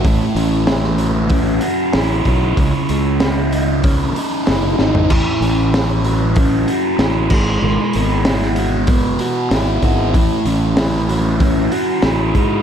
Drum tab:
CC |----------------|----------------|x-------------x-|----------------|
HH |o-o-o-o-o-o-o-o-|o-o-o-o-o-o-o---|--o-o-o-o-o-o---|--o-o-o-o-o-o-o-|
SD |----oo------o---|----o-------o-o-|----o-------o---|----oo------o---|
FT |----------------|---------------o|----------------|----------------|
BD |o-------o-----o-|o-------o-------|o-------o-----o-|--------o-----o-|

CC |----------------|
HH |o-o-o-o-o-o-o-o-|
SD |----oo------o---|
FT |----------------|
BD |o-------o-----o-|